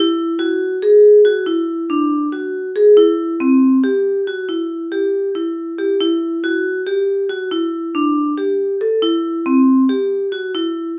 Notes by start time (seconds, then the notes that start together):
Already playing: E4
0.39 F#4
0.82 G#4
1.25 F#4
1.46 E4
1.90 D4
2.32 F#4
2.76 G#4
2.97 E4
3.40 C4
3.84 G4
4.27 F#4
4.49 E4
4.92 G4
5.35 E4
5.78 G4
6.01 E4
6.44 F#4
6.87 G4
7.30 F#4
7.51 E4
7.95 D4
8.38 G4
8.81 A4
9.02 E4
9.46 C4
9.89 G4
10.32 F#4
10.55 E4